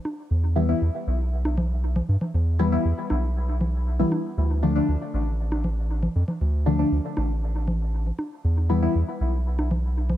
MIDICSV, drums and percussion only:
0, 0, Header, 1, 2, 480
1, 0, Start_track
1, 0, Tempo, 508475
1, 288, Time_signature, 4, 2, 24, 8
1, 9601, End_track
2, 0, Start_track
2, 0, Title_t, "Drums"
2, 47, Note_on_c, 9, 63, 56
2, 142, Note_off_c, 9, 63, 0
2, 1370, Note_on_c, 9, 63, 73
2, 1464, Note_off_c, 9, 63, 0
2, 1487, Note_on_c, 9, 64, 88
2, 1582, Note_off_c, 9, 64, 0
2, 1850, Note_on_c, 9, 64, 88
2, 1944, Note_off_c, 9, 64, 0
2, 2089, Note_on_c, 9, 64, 79
2, 2183, Note_off_c, 9, 64, 0
2, 2927, Note_on_c, 9, 63, 70
2, 3021, Note_off_c, 9, 63, 0
2, 3407, Note_on_c, 9, 64, 84
2, 3501, Note_off_c, 9, 64, 0
2, 3887, Note_on_c, 9, 63, 57
2, 3981, Note_off_c, 9, 63, 0
2, 5209, Note_on_c, 9, 63, 68
2, 5304, Note_off_c, 9, 63, 0
2, 5327, Note_on_c, 9, 64, 81
2, 5421, Note_off_c, 9, 64, 0
2, 5689, Note_on_c, 9, 64, 80
2, 5784, Note_off_c, 9, 64, 0
2, 5928, Note_on_c, 9, 64, 73
2, 6023, Note_off_c, 9, 64, 0
2, 6767, Note_on_c, 9, 63, 68
2, 6861, Note_off_c, 9, 63, 0
2, 7246, Note_on_c, 9, 64, 84
2, 7340, Note_off_c, 9, 64, 0
2, 7727, Note_on_c, 9, 63, 53
2, 7822, Note_off_c, 9, 63, 0
2, 9050, Note_on_c, 9, 63, 66
2, 9145, Note_off_c, 9, 63, 0
2, 9167, Note_on_c, 9, 64, 81
2, 9262, Note_off_c, 9, 64, 0
2, 9531, Note_on_c, 9, 64, 85
2, 9601, Note_off_c, 9, 64, 0
2, 9601, End_track
0, 0, End_of_file